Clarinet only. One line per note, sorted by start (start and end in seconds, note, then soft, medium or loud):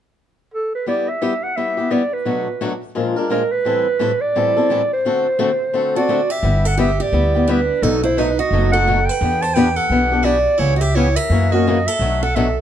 0.54 0.73 A4 medium
0.75 0.86 B4 medium
0.88 1.10 D5 medium
1.08 1.45 E5 medium
1.43 1.58 F#5 medium
1.56 1.92 E5 medium
1.91 2.15 D5 medium
2.13 2.82 B4 medium
3.31 3.53 A#4 medium
3.52 4.22 B4 medium
4.21 4.91 D5 loud
4.93 5.92 C5 medium
5.96 6.33 D5 medium
6.31 6.69 E5 medium
6.67 6.79 F#5 medium
6.80 7.03 E5 medium
7.02 7.52 D5 medium
7.50 7.85 B4 medium
7.83 8.04 A4 medium
8.04 8.19 C5 medium
8.18 8.39 B4 medium
8.40 8.71 D#5 medium
8.72 9.07 F#5 loud
9.06 9.44 G5 medium
9.42 9.56 A5 medium
9.54 9.78 G5 loud
9.77 10.26 F#5 medium
10.25 10.60 D5 loud
10.59 10.76 C#5 medium
10.77 10.82 D#5 medium
10.77 10.97 E5 medium
10.95 11.18 C#5 medium
11.16 11.53 E5 medium
11.51 11.88 D#5 medium
11.87 12.24 E5 medium
12.23 12.37 F#5 medium
12.35 12.57 E5 medium